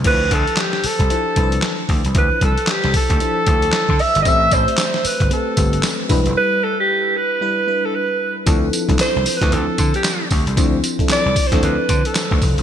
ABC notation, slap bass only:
X:1
M:4/4
L:1/16
Q:"Swing 16ths" 1/4=114
K:Ddor
V:1 name="Slap bass" clef=bass
D,,2 D,, z4 C,, z2 C,,2 z2 D,, C,, | D,, z C,, z2 C,, z D,, z2 D,,2 z D, z G,,, | A,,,2 A,,, z4 G,,, z2 G,,,2 z2 E,,, F,,, | z16 |
D,,2 z C,, z C,, z D,, D,, z D, z3 D,, C,, | D,,2 z3 C,, z D,, D,, z D, z2 D,, F,,, G,,, |]